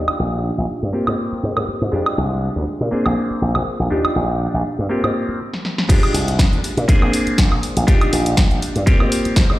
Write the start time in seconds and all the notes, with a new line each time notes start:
Already playing: D4 D#4 F4 G4
0.08 muted slap bass stroke, high woodblock
0.19 A#1
0.58 A#1
0.83 G2
0.93 A#3 C4 F4 G4
1.07 G#2, high woodblock
1.32 muted slap bass stroke
1.43 G#2
1.57 G#2, high woodblock
1.68 muted slap bass stroke
1.82 G#2
1.92 F2 G#3 D4 F4 G4
2.06 high woodblock
2.18 C2
2.56 D2
2.67 muted slap bass stroke
2.81 A#2
2.91 A#3 C4 D4 G#4, muted slap bass stroke
3.06 A#1, high woodblock
3.31 muted slap bass stroke
3.42 A#1
3.55 A#1, high woodblock
3.67 muted slap bass stroke
3.80 A#1
3.90 D#2 D4 D#4 F4 G4
4.04 muted slap bass stroke, high woodblock
4.16 A#1
4.54 A#1
4.79 G2
4.89 A#3 C4 F4 G4
5.04 G#2, high woodblock
5.29 muted slap bass stroke
5.54 snare
5.65 snare
5.78 snare
5.89 F2 G#3 D4 F4 G4, kick, closed hi-hat, crash
6.03 closed hi-hat, high woodblock
6.14 C2, open hi-hat
6.28 closed hi-hat
6.39 kick, snare, closed hi-hat
6.52 D2, closed hi-hat
6.64 muted slap bass stroke, open hi-hat
6.77 A#2, closed hi-hat
6.88 A#3 C4 D4 G#4, muted slap bass stroke, kick, closed hi-hat
7.02 A#1, high woodblock
7.13 open hi-hat
7.27 muted slap bass stroke, closed hi-hat
7.38 A#1, kick, snare, closed hi-hat
7.52 A#1, high woodblock
7.63 open hi-hat
7.77 A#1, closed hi-hat
7.87 D#2 D4 D#4 F4 G4, kick, closed hi-hat
8.01 muted slap bass stroke, closed hi-hat, high woodblock
8.13 A#1, open hi-hat
8.26 closed hi-hat
8.37 kick, snare, closed hi-hat
8.51 A#1, closed hi-hat
8.62 muted slap bass stroke, open hi-hat
8.76 G2, closed hi-hat
8.86 A#3 C4 F4 G4, kick, closed hi-hat
9.00 G#2, high woodblock
9.12 open hi-hat
9.25 muted slap bass stroke, closed hi-hat
9.36 G#2, kick, snare, closed hi-hat
9.50 G#2, high woodblock